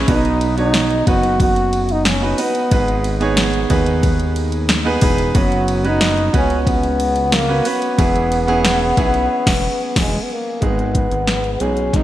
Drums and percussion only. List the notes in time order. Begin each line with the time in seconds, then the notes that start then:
0.08 kick, ride
0.25 ride
0.41 ride
0.58 ride
0.74 snare, ride
0.90 ride
1.07 kick, ride
1.23 ride
1.40 kick, ride
1.56 ride
1.73 ride
1.89 ride
2.05 snare, ride
2.38 open hi-hat, ride
2.55 ride
2.71 kick, ride
2.88 ride
3.04 ride
3.21 ride
3.37 snare, ride
3.54 ride
3.70 kick, ride
3.86 ride
4.03 kick, ride
4.20 ride
4.36 ride
4.52 ride
4.69 snare, ride
5.01 kick, open hi-hat, ride
5.18 ride
5.35 kick, ride
5.52 ride
5.68 ride
5.85 ride
6.01 snare, ride
6.17 ride
6.34 kick, ride
6.50 ride
6.67 kick, ride
6.83 ride
7.00 ride
7.16 ride
7.32 snare, ride
7.65 open hi-hat, ride
7.82 ride
7.98 kick, ride
8.16 ride
8.32 ride
8.48 ride
8.65 snare, ride
8.97 kick, ride
9.14 ride
9.47 kick, snare, crash
9.96 kick, snare, crash
10.62 kick, closed hi-hat
10.79 closed hi-hat
10.95 kick, closed hi-hat
11.11 closed hi-hat
11.27 snare, closed hi-hat
11.44 closed hi-hat
11.60 closed hi-hat
11.77 closed hi-hat
11.93 kick, snare, closed hi-hat